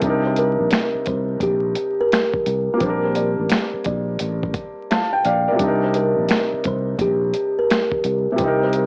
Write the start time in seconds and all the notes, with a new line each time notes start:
Already playing: C3 G3 G4
0.01 C2 D4 D#4, kick, closed hi-hat
0.09 A#4
0.26 C5
0.36 A#4, closed hi-hat
0.60 A#1
0.71 finger snap, snare, closed hi-hat
0.95 muted fretless electric bass stroke
1.06 C2 C5, kick, closed hi-hat
1.40 A#1 G4, kick, closed hi-hat
1.75 closed hi-hat
2.01 A#4
2.12 finger snap, snare, closed hi-hat
2.34 kick
2.46 C2, closed hi-hat
2.74 A#3
2.78 A#1 G3 C4, kick, closed hi-hat
2.85 D4
2.89 A#4
3.05 C5
3.15 D5, closed hi-hat
3.39 A1
3.49 finger snap, snare, closed hi-hat
3.74 muted fretless electric bass stroke
3.84 A#1 D5, kick, closed hi-hat
4.19 A1, closed hi-hat
4.43 kick
4.54 kick, closed hi-hat
4.91 F5 A5, finger snap, snare, closed hi-hat
5.13 G5
5.25 A#1 D5 F5, closed hi-hat
5.48 A#4 D5
5.52 C3 G3
5.59 C2 D4, kick, closed hi-hat
5.64 D#4 A#4
5.84 C5
5.94 A#4, closed hi-hat
6.18 A#1
6.28 finger snap, snare, closed hi-hat
6.54 muted fretless electric bass stroke
6.64 C2 C5, kick, closed hi-hat
6.98 A#1 G4, kick, closed hi-hat
7.34 closed hi-hat
7.59 A#4
7.71 finger snap, snare, closed hi-hat
7.92 kick
8.04 C2, closed hi-hat
8.32 C3 G3
8.38 C2 C4, kick, closed hi-hat
8.44 D#4 A#4
8.63 C5
8.73 D#5, closed hi-hat